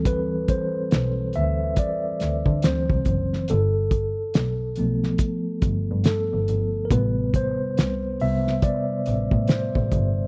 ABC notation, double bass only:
X:1
M:4/4
L:1/16
Q:"Swing 16ths" 1/4=70
K:Am
V:1 name="Double bass" clef=bass
D,,3 z B,,,2 D,, z3 D,, D, D,, C,, ^F,,,2 | G,,,3 z B,,,2 B,,, z3 G,,, G,, z G,,, G,,,2 | A,,,3 z C,,2 C,, z3 A,,, A,, z A,,, G,,,2 |]